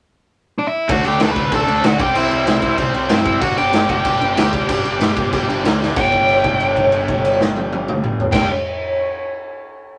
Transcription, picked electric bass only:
0.89 D2
1.05 D2
1.21 D2
1.36 D2
1.52 D2
1.68 D2
1.84 D2
2.00 C2
2.15 C2
2.31 C2
2.46 C2
2.63 C2
2.79 C2
2.94 C2
3.09 G2
3.42 G1
3.59 G1
3.74 G1
3.89 G1
4.05 G1
4.21 G1
4.36 D2
4.69 G1
4.85 G1
5.01 G1
5.17 G1
5.33 G1
5.49 G1
5.64 D2
5.97 G1
8.33 G1

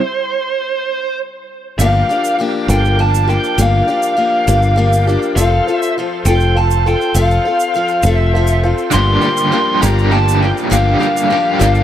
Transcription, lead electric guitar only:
Already playing: C5
1.79 F5
2.71 G5
3.00 A5
3.29 G5
3.62 F5
5.36 F5
5.76 E5
6.26 G5
6.57 A5
6.87 G5
7.16 F5
8.09 E5
8.93 C6
9.82 A#5
10.12 A5
10.41 G5
10.72 F5

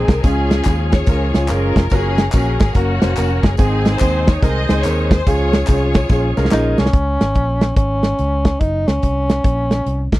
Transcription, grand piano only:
Already playing: G#3 C4 D#4 G#4
0.24 C#3 G#3 C#4 F4 G#4
0.67 G#3 C#4 F4 G#4
1.09 G#3 C#4 F4 A#4
1.34 G#3 C#4 F4 G#4
1.49 G#3 C#4 F4 A#4
1.92 A#3 C#4 F#4 A#4
2.33 A#3 C#4 F#4 A#4
2.76 A#3 C#4 F#4 A#4
3.02 A#3 C#4 F#4 C5
3.17 A#3 C#4 F#4 A#4
3.58 G#2 G#3 C4 D#4 G#4
4.01 G#3 C4 D#4 G#4
4.43 G#3 C4 D#4 A#4
4.69 G#3 C4 D#4 G#4
4.84 G#3 C4 D#4 A#4
5.27 C#3 G#3 C#4 F4 G#4
5.69 G#3 C#4 F4 G#4
6.11 G#3 C#4 F4 G#4
6.37 G#3 C#4 F4 A#4
6.52 G#3 C#4 F4 A#4

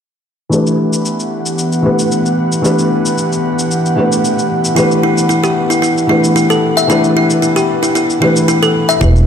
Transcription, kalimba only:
4.76 E4
5.03 E4
5.29 E4
5.44 G4
5.70 E4
5.82 E4
6.09 E4
6.36 E4
6.50 A4
6.77 E5
6.90 E4
7.17 E4
7.42 E4
7.56 G4
7.83 E4
7.95 E4
8.22 E4
8.48 E4
8.63 A4
8.89 E5
9.01 E4

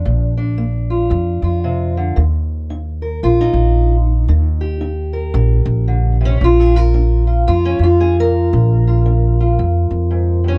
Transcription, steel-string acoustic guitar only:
Already playing: D4
0.06 A#2
0.37 D4
0.58 A#3
0.90 F4
1.10 F2
1.44 F4
1.64 C3
1.97 D3
2.16 D#3
2.70 D#4
3.02 A#4
3.23 A#2 F4
3.41 D#4
4.29 D#3
4.61 G4
4.81 D#4
5.13 A#4
5.35 A#2
5.88 D3
6.21 C3
6.25 C#4
6.42 A#2 F4
6.60 G#4
6.75 F4 A#4
6.94 D4
7.27 F4
7.47 F2 F4
7.65 C#4
7.83 F4
8.00 D4 G#4
8.20 A#4
8.54 A#2
8.87 F4
9.06 D4
9.40 F4
9.59 F2
10.11 G#2
10.44 G2
10.48 C#4

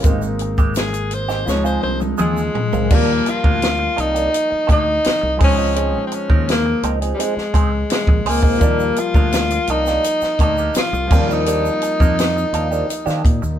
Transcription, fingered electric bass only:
0.04 G#1
1.47 C#2
1.83 C2
2.19 D#2
2.73 C#2
2.91 D#2
3.45 D2
3.98 C2
4.52 muted fingered electric bass stroke
4.69 D2
5.06 muted fingered electric bass stroke
5.23 C2
5.41 C#2
6.30 D#2
6.83 C#2
7.37 muted fingered electric bass stroke
7.55 C#2
8.08 A#1
8.25 C#2
8.62 D#2
9.14 D2
9.68 C2
10.22 muted fingered electric bass stroke
10.40 D2
10.93 C2
11.11 D#2
12.01 F2
12.53 D#2
13.07 D#3
13.25 A#2
13.43 D#2

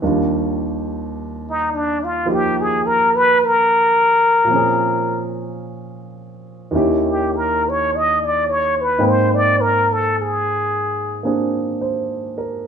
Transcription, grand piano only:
0.02 D#2 D#3 G3 D4 F4
2.25 F3 A#3 D#4 G4
4.44 A#2 F3
4.49 C4 C#4
4.55 G#4
6.71 D#2 D#3 C#4 E4
6.76 G4
8.98 G#2 G#3 A#3 C4 G5
11.23 A#3 C4 D4 G#4
11.81 C5
12.38 A#4

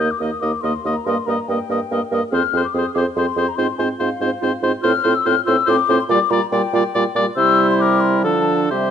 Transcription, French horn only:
0.20 A#3
0.42 A#3
0.63 A#3
0.85 A#3
1.07 A#3
1.27 A#3
1.48 A#3
1.69 A#3
1.91 A#3
2.12 A#3
2.32 C4
2.53 C4
2.75 C4
2.96 C4
3.17 C4
3.37 C4
3.58 C4
3.80 C4
4.01 C4
4.21 C4
4.43 C4
4.63 C4
4.84 C4
5.05 C4
5.26 C4
5.48 C4
5.70 C4
5.90 C4
6.11 G3
6.32 G3
6.53 G3
6.75 G3
6.95 G3
7.17 G3
7.38 G3
8.24 F3
8.71 G3

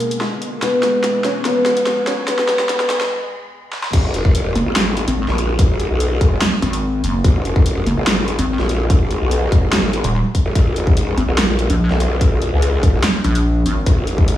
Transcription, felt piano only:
Already playing: A#3 A#4
0.62 B3 B4
1.24 C#4 C#5
1.45 B3 B4
2.07 C#4 C#5
2.28 B3 B4
2.69 B3 B4

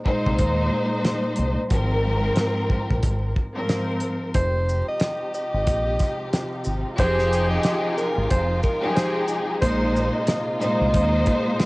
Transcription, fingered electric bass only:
0.27 C2
0.40 D#2
1.39 C2
1.71 G#1
2.91 A#1
3.04 G#1
4.35 F1
5.54 G#1
5.68 A#1
6.66 G#1
6.99 F1
8.18 G#1
8.31 F1
9.63 A#1
10.81 C2
10.95 D#2

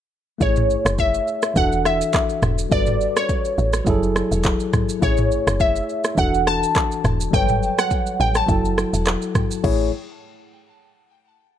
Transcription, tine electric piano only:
0.38 A3 E4 G#4
0.43 C#5
1.54 E3 D4 F#4
1.59 A4
2.69 G3 F#4 A4 B4
3.85 F#3 E4 G#4
3.90 A4
5.00 A3 E4 G#4
5.05 C#5
6.15 E3 D4 F#4
6.20 A4
7.31 F#3 G3 A4 B4
7.36 C#5
8.46 F#3 E4 F#4
8.51 A4
9.64 A3 E4 G#4 C#5

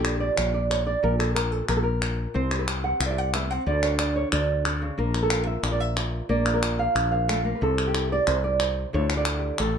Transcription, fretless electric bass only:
Already playing: A#1
0.38 A#1
1.04 A#1
1.69 A#1
2.35 C2
3.00 C2
3.67 D2
4.33 D2
4.98 A#1
5.63 A#1
6.29 A#1
6.95 A#1
7.62 C2
8.27 C2
8.94 D2
9.60 A1

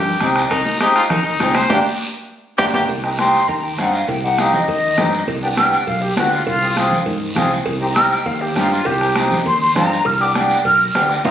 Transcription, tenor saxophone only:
Already playing: G4
0.50 D#4
0.65 D#4
0.80 G4
0.96 F4
1.10 D#4
1.25 D#4
1.55 C5
1.70 G4
2.58 G4
2.75 G4

